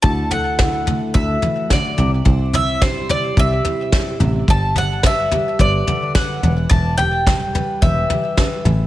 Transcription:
<<
  \new Staff \with { instrumentName = "Mandolin" } { \time 4/4 \key d \mixolydian \tempo 4 = 108 a''8 fis''4. e''4 d''8. r16 | r8 e''8 c''8 d''8 e''4. r8 | a''8 fis''8 e''4 d''4 fis''8. r16 | a''8 g''4. e''4. r8 | }
  \new Staff \with { instrumentName = "Steel-string acoustic guitar" } { \time 4/4 \key d \mixolydian << { <a e' fis' a'>8 a'8 e'4 fis'4. r8 | c''8 e'4 g'8 c''8 e'8 g'8 r8 | r8 d''8 b'4 b'8 b'8 b'8 r8 | e''8 g'4 b'8 b'8 g'8 b'8 r8 | } \\ { d4. a4 e8 d8 c8~ | c4 g4 c4. c8 | g4. g'4 d4 e8~ | e4 g4 e4. e8 | } >> }
  \new Staff \with { instrumentName = "Picked electric bass" } { \clef bass \time 4/4 \key d \mixolydian d,2 d,8 r4 c,8 | c,2 c,8 r4 a,,8 | g,,2 g,,8 r4 e,,8 | e,,2 e,,8 r4 a,,8 | }
  \new DrumStaff \with { instrumentName = "Drums" } \drummode { \time 4/4 <bd tomfh>8 tomfh8 <bd sn tomfh>8 tomfh8 <bd tomfh>8 tomfh8 <bd sn tomfh>8 tomfh8 | <bd tomfh>8 tomfh8 <bd sn tomfh>8 tomfh8 <bd tomfh>8 tomfh8 <bd sn tomfh>8 tomfh8 | <bd tomfh>8 tomfh8 <bd sn tomfh>8 tomfh8 <bd tomfh>8 tomfh8 <bd sn tomfh>8 tomfh8 | <bd tomfh>8 tomfh8 <bd sn tomfh>8 tomfh8 <bd tomfh>8 tomfh8 <bd sn tomfh>8 tomfh8 | }
>>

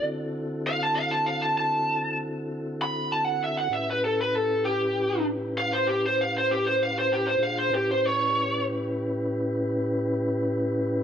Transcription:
<<
  \new Staff \with { instrumentName = "Lead electric guitar" } { \time 12/8 \key a \dorian \tempo 4. = 65 r4 f''16 a''16 f''16 a''16 f''16 a''16 a''4 r4 b''8 a''16 fis''16 e''16 fis''16 | e''16 b'16 a'16 b'16 a'8 g'4 r8 f''16 c''16 g'16 c''16 f''16 c''16 g'16 c''16 f''16 c''16 g'16 c''16 | f''16 c''16 g'16 c''16 cis''4 r1 | }
  \new Staff \with { instrumentName = "Tonewheel organ" } { \time 12/8 \key a \dorian <d c' e' fis' a'>1. | <a, cis' e' g' b'>1. | <bes, d' f' gis' c''>8 <a, cis' e' g' b'>1~ <a, cis' e' g' b'>4. | }
>>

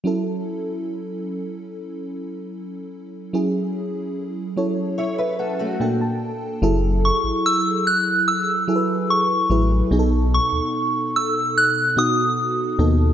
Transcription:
<<
  \new Staff \with { instrumentName = "Synth bell" } { \time 4/4 \key fis \minor \tempo 4 = 73 r1 | r1 | r8 cis'''8 e'''8 fis'''8 e'''4 cis'''8. r16 | r8 cis'''4 e'''8 fis'''8 dis'''4 r8 | }
  \new Staff \with { instrumentName = "Steel-string acoustic guitar" } { \time 4/4 \key fis \minor r1 | r2 <e' cis''>16 b'16 <cis' a'>16 <a fis'>8 r8. | r1 | r1 | }
  \new Staff \with { instrumentName = "FM electric piano" } { \time 4/4 \key fis \minor << { r1 | r4. cis''8 e''16 e''16 fis''8 g''16 a''8. | r1 | r1 | } \\ { <fis cis' e' a'>1 | <fis cis' e' gis'>4. <fis cis' e' a'>4. <ais, ais d' a'>4 | <fis e' gis' a'>4. r4 <fis e' gis' a' b'>4 <fis e' gis' b'>8 | <b, b dis' gis' a'>4. r4 <b, b dis' fis'>4 <b, b dis' a'>8 | } >> }
  \new Staff \with { instrumentName = "Analog synth bass" } { \clef bass \time 4/4 \key fis \minor r1 | r1 | fis,,8. a,,16 r2 r8 a,,8 | b,,8. dis,16 r2 r8 dis,8 | }
>>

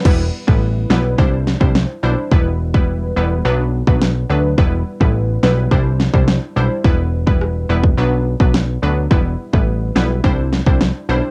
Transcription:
<<
  \new Staff \with { instrumentName = "Synth pluck" } { \time 4/4 \key e \minor \tempo 4 = 106 <g b e' b'>16 r8 <g b e' b'>8. <g b e' b'>8 <g d' e' c''>16 r8 <g d' e' c''>16 r8 <g d' e' c''>16 r16 | <g b e' b'>16 r8 <g b e' b'>8. <g b e' b'>8 <fis b d' b'>16 r8 <fis b d' b'>16 r8 <fis b d' b'>16 r16 | <g b e' b'>16 r8 <g b e' b'>8. <g b e' b'>8 <g d' e' c''>16 r8 <g d' e' c''>16 r8 <g d' e' c''>16 r16 | <g b e' b'>16 r8 <g b e' b'>8. <g b e' b'>8 <fis b d' b'>16 r8 <fis b d' b'>16 r8 <fis b d' b'>16 r16 |
<g b e' b'>16 r8 <g b e' b'>8. <g b e' b'>8 <g d' e' c''>16 r8 <g d' e' c''>16 r8 <g d' e' c''>16 r16 | }
  \new Staff \with { instrumentName = "Analog synth bass" } { \clef bass \time 4/4 \key e \minor e,,8 r16 a,,8. b,,8 c,8. c,8 r16 b,,16 r16 | e,,4. e,,8 b,,8. b,,8. d,8 | e,,8 r16 a,,8. b,,8 c,8. c,8 r16 b,,16 r16 | e,,4. e,,8 b,,8. b,,8. d,8 |
e,,8 r16 a,,8. b,,8 c,8. c,8 r16 b,,16 r16 | }
  \new DrumStaff \with { instrumentName = "Drums" } \drummode { \time 4/4 <cymc bd>8. bd16 r8 sn8 bd8 sn16 bd16 sn4 | bd8. bd16 r4 r8. bd16 sn4 | bd8. bd16 r8 sn8 bd8 sn16 bd16 sn4 | bd8. bd16 ss8. bd16 r8. bd16 sn4 |
bd8. bd16 r8 sn8 bd8 sn16 bd16 sn4 | }
>>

